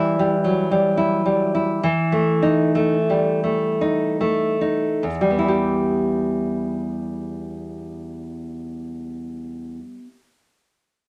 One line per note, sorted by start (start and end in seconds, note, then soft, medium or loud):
0.00 1.81 E3 medium
0.00 0.18 G3 soft
0.00 0.34 E4 medium
0.19 0.70 G3 soft
0.44 1.69 F#3 soft
0.71 1.24 G3 soft
0.97 1.53 E4 soft
1.26 1.83 G3 soft
1.55 1.84 E4 soft
1.83 5.01 E3 medium
2.12 2.74 A3 soft
2.42 2.96 D#4 medium
2.75 3.42 A3 soft
3.10 4.84 G3 soft
3.44 4.19 A3 soft
3.81 4.60 D#4 soft
4.21 5.03 A3 soft
4.61 5.03 D#4 soft
5.03 9.79 E2 soft
5.21 9.97 G3 soft
5.30 10.06 B3 soft
5.39 10.14 E4 soft
5.48 10.19 G4 soft